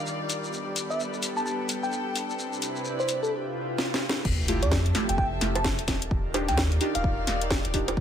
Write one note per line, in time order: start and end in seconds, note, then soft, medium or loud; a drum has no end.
0.00 0.51 D#3 medium
0.00 0.53 D#3 medium
0.00 3.15 G3 medium
0.00 0.51 D4 medium
0.00 0.51 F4 medium
0.00 0.49 G4 medium
0.00 0.51 A#4 medium
0.00 1.29 D5 medium
0.00 0.53 F5 medium
0.07 shekere soft
0.30 open hi-hat medium
0.30 shekere medium
0.44 shekere soft
0.53 2.37 G3 medium
0.53 2.39 B3 medium
0.53 4.21 D4 medium
0.53 2.37 G4 medium
0.53 2.37 A4 medium
0.53 2.37 B4 medium
0.53 shekere soft
0.76 open hi-hat loud
0.76 shekere medium
0.90 1.01 E5 medium
0.90 shekere soft
1.00 shekere soft
1.14 shekere soft
1.23 open hi-hat medium
1.23 shekere medium
1.37 3.14 A4 medium
1.37 3.14 G5 medium
1.37 1.43 A5 medium
1.37 shekere soft
1.46 1.55 A5 medium
1.46 shekere soft
1.69 open hi-hat loud
1.69 shekere medium
1.83 2.16 G5 medium
1.83 shekere soft
1.92 shekere soft
2.16 open hi-hat medium
2.16 shekere medium
2.30 shekere soft
2.39 4.23 C3 medium
2.39 3.32 C4 medium
2.39 4.23 E4 medium
2.39 4.23 G4 medium
2.39 4.23 B4 medium
2.39 shekere soft
2.53 3.32 B4 medium
2.53 shekere soft
2.60 3.32 E4 medium
2.60 open hi-hat loud
2.60 shekere medium
2.76 shekere soft
2.85 3.32 D5 medium
2.85 shekere soft
3.00 3.20 C5 medium
3.00 shekere soft
3.09 open hi-hat medium
3.09 shekere medium
3.23 3.32 A4 medium
3.23 shekere soft
3.32 swell medium
3.78 snare medium
3.94 snare medium
4.09 snare medium
4.25 4.64 F1 loud
4.25 6.74 F3 medium
4.25 5.86 C4 medium
4.25 5.86 G4 medium
4.25 5.86 A4 medium
4.25 5.86 E5 medium
4.25 kick loud
4.25 crash loud
4.25 sub drop medium
4.45 4.93 A3 medium
4.45 4.93 E4 medium
4.45 4.93 F4 medium
4.45 4.93 G4 loud
4.45 6.74 A5 medium
4.45 open hi-hat loud
4.62 4.92 F2 medium
4.62 4.73 D5 loud
4.62 closed hi-hat medium
4.72 kick loud
4.72 snare loud
4.86 closed hi-hat soft
4.95 5.03 A3 medium
4.95 5.03 E4 medium
4.95 5.03 F4 medium
4.95 5.03 G4 medium
4.95 snare medium
4.95 open hi-hat loud
4.99 5.88 E5 medium
5.09 5.39 F1 loud
5.09 5.15 G5 medium
5.09 closed hi-hat medium
5.18 5.27 G5 medium
5.18 kick loud
5.41 5.80 F1 loud
5.41 5.55 A3 medium
5.41 5.55 E4 medium
5.41 5.55 F4 medium
5.41 5.55 G4 medium
5.41 snare medium
5.41 open hi-hat loud
5.55 5.67 A5 medium
5.55 closed hi-hat medium
5.55 high bongo medium
5.64 kick loud
5.64 snare loud
5.79 6.08 D#1 medium
5.79 closed hi-hat medium
5.88 7.97 D#3 medium
5.88 7.95 F4 medium
5.88 7.95 G4 medium
5.88 7.95 A#4 loud
5.88 8.00 D5 medium
5.88 kick medium
5.88 snare medium
5.88 open hi-hat loud
6.02 closed hi-hat medium
6.11 6.50 D#1 loud
6.11 kick loud
6.31 6.79 D4 medium
6.31 6.79 D#4 medium
6.31 6.79 F4 medium
6.31 6.79 G4 medium
6.31 8.00 D5 medium
6.31 open hi-hat loud
6.31 high bongo medium
6.48 6.78 D#2 medium
6.48 7.97 F5 medium
6.48 6.59 G5 medium
6.48 snare soft
6.48 closed hi-hat medium
6.57 kick loud
6.57 snare loud
6.72 closed hi-hat soft
6.81 6.89 D4 medium
6.81 6.89 D#4 medium
6.81 6.89 F4 medium
6.81 6.89 G4 loud
6.81 open hi-hat medium
6.95 7.25 D#1 loud
6.95 7.42 F5 medium
6.95 closed hi-hat medium
7.04 kick loud
7.27 7.61 D#1 loud
7.27 snare medium
7.27 open hi-hat loud
7.41 closed hi-hat medium
7.50 kick loud
7.50 snare loud
7.65 7.94 D#1 medium
7.65 closed hi-hat medium
7.74 7.82 D4 medium
7.74 7.82 D#4 medium
7.74 7.82 F4 medium
7.74 7.82 G4 medium
7.74 kick medium
7.74 open hi-hat medium
7.88 closed hi-hat medium
7.88 high bongo medium
7.97 8.00 G1 loud
7.97 8.00 B3 medium
7.97 8.00 D4 medium
7.97 8.00 A4 medium
7.97 8.00 B4 medium
7.97 kick loud